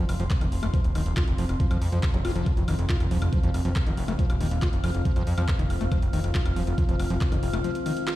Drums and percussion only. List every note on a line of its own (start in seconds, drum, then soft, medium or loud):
0.09 open hi-hat loud
0.09 high woodblock medium
0.20 closed hi-hat medium
0.30 kick loud
0.30 clap loud
0.30 closed hi-hat medium
0.41 closed hi-hat medium
0.41 high woodblock soft
0.52 open hi-hat loud
0.63 closed hi-hat medium
0.63 high woodblock medium
0.74 kick loud
0.74 closed hi-hat medium
0.84 closed hi-hat medium
0.95 open hi-hat loud
0.95 high woodblock soft
1.06 closed hi-hat medium
1.17 kick loud
1.17 clap loud
1.17 closed hi-hat medium
1.17 high woodblock medium
1.28 closed hi-hat medium
1.38 open hi-hat loud
1.49 closed hi-hat medium
1.49 high woodblock soft
1.60 kick loud
1.60 closed hi-hat medium
1.71 closed hi-hat medium
1.71 high woodblock medium
1.82 open hi-hat loud
1.92 closed hi-hat medium
2.03 kick loud
2.03 clap loud
2.03 closed hi-hat medium
2.03 high woodblock soft
2.14 closed hi-hat medium
2.25 open hi-hat loud
2.25 high woodblock medium
2.36 closed hi-hat medium
2.46 kick loud
2.46 closed hi-hat medium
2.46 high woodblock soft
2.57 closed hi-hat medium
2.68 open hi-hat loud
2.68 high woodblock medium
2.79 closed hi-hat medium
2.89 kick loud
2.89 clap loud
2.89 closed hi-hat medium
3.00 closed hi-hat medium
3.00 high woodblock soft
3.11 open hi-hat medium
3.22 closed hi-hat medium
3.22 high woodblock medium
3.33 kick loud
3.33 closed hi-hat medium
3.43 closed hi-hat medium
3.54 open hi-hat loud
3.54 high woodblock soft
3.65 closed hi-hat medium
3.76 kick loud
3.76 clap loud
3.76 closed hi-hat medium
3.76 high woodblock medium
3.87 closed hi-hat medium
3.97 open hi-hat loud
4.08 closed hi-hat medium
4.08 high woodblock soft
4.19 kick loud
4.19 closed hi-hat medium
4.30 closed hi-hat medium
4.30 high woodblock medium
4.41 open hi-hat loud
4.51 closed hi-hat medium
4.62 kick loud
4.62 clap loud
4.62 closed hi-hat medium
4.62 high woodblock soft
4.73 closed hi-hat medium
4.84 open hi-hat medium
4.84 high woodblock medium
4.95 closed hi-hat medium
5.05 kick loud
5.05 closed hi-hat medium
5.16 closed hi-hat medium
5.16 high woodblock soft
5.27 open hi-hat loud
5.38 closed hi-hat medium
5.38 high woodblock medium
5.48 kick loud
5.48 clap loud
5.48 closed hi-hat medium
5.59 closed hi-hat medium
5.70 open hi-hat medium
5.70 high woodblock soft
5.81 closed hi-hat medium
5.92 kick loud
5.92 closed hi-hat medium
5.92 high woodblock medium
6.02 closed hi-hat medium
6.13 open hi-hat loud
6.24 closed hi-hat medium
6.24 high woodblock soft
6.35 kick loud
6.35 clap loud
6.35 closed hi-hat medium
6.46 closed hi-hat medium
6.46 high woodblock medium
6.56 open hi-hat medium
6.67 closed hi-hat medium
6.78 kick loud
6.78 closed hi-hat medium
6.78 high woodblock soft
6.89 closed hi-hat medium
7.00 open hi-hat loud
7.00 high woodblock medium
7.10 closed hi-hat medium
7.21 kick loud
7.21 clap loud
7.21 closed hi-hat medium
7.32 closed hi-hat medium
7.32 high woodblock soft
7.43 open hi-hat medium
7.54 closed hi-hat medium
7.54 high woodblock medium
7.64 closed hi-hat medium
7.75 closed hi-hat medium
7.86 open hi-hat loud
7.86 high woodblock soft
7.97 closed hi-hat medium
8.07 clap loud
8.07 closed hi-hat medium
8.07 high woodblock medium